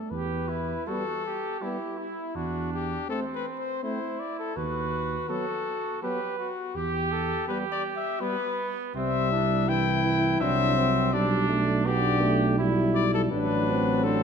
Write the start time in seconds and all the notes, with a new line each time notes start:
Already playing: A3 A4
0.10 E2 G4 B4
0.49 E4
0.87 G3 B3 F#4 A4
1.25 G4
1.60 G3 B3 E4 G4
1.98 E4
2.35 E2 D4 F#4
2.73 G4
3.09 A3 C4 A4
3.35 B4
3.59 C5
3.83 A3 C4 E4 C5
4.20 D5
4.39 A4
4.56 D#2 F#4 B4
5.29 F#3 B3 F#4 A4
6.02 F#3 B3 G4 B4
6.39 F#4
6.75 E2 G4
7.12 A4
7.47 G3 B3 G4 B4
7.72 D5
7.96 E5
8.21 G3 B3 B4
8.95 C2 G3 C4 E5
9.32 D4 E4
9.68 E3 E4 G5
10.05 E3
10.41 C2 F#3 C4 D4 E5
10.78 C4
11.13 B1 G3 D4 D5
11.49 A3
11.85 B3 D4 G4 D5
12.22 A3
12.58 G3 E4
12.95 D5
13.14 A4
13.31 A1 F#3 D4 B4
13.69 C4
14.04 C4 D4 A4